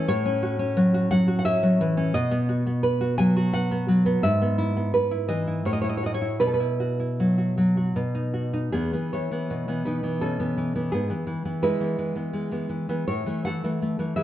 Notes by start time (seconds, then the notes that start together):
0.08 A2 C#5
0.26 C#4
0.43 F#4
0.59 C#4
0.77 F#3
0.94 F#4
1.11 F#3 F#5
1.28 F#4
1.39 F#5
1.45 C#4 E5
1.63 F#3
1.81 E3
1.97 C#4
2.14 B2 D#5
2.31 B3
2.49 F#4
2.67 B3
2.83 B4
3.01 F#4
3.18 F#3 G#5
3.36 F#4
3.53 B4 F#5
3.71 B3
3.88 F#3
4.06 B3
4.23 G#2 E5
4.42 B3
4.58 E4
4.77 B3
4.94 B4
5.11 E4
5.29 E3 D#5
5.47 E4
5.65 A2 C#5
5.73 D#5
5.82 E4 C#5
5.89 D#5
5.97 C#5
6.03 F#4 D#5
6.14 C#5
6.22 E4
6.40 B2 B4
6.47 A4
6.54 B4
6.60 E4
6.80 F#4
7.00 E4
7.20 F#3
7.38 F#4
7.58 F#3
7.77 F#4
7.96 B2
8.15 D#4
8.34 F#4
8.53 D#4
8.72 E2 B3 G#4
8.93 E3 B3
9.13 E3 E4 C#5
9.31 E3 B3
9.50 B2
9.68 E3 B3
9.85 E3 D#4 B4
10.03 E3 B3
10.21 B2 C#4 A4
10.40 E3 B3
10.57 E3
10.75 E3 B3
10.92 G#2 B3 G#4
11.10 E3 B3
11.27 E3
11.45 E3 B3
11.63 G#3 E4 B4
11.80 E3 B3
11.99 E3
12.16 E3 B3
12.33 G#3
12.51 E3 B3
12.69 E3
12.89 E3 B3
13.08 A2 E4 C#5
13.26 E3 A3
13.45 E3 A4 F#5
13.64 E3 A3
13.82 A3
13.99 E3 A3
14.16 E3 G#4 E5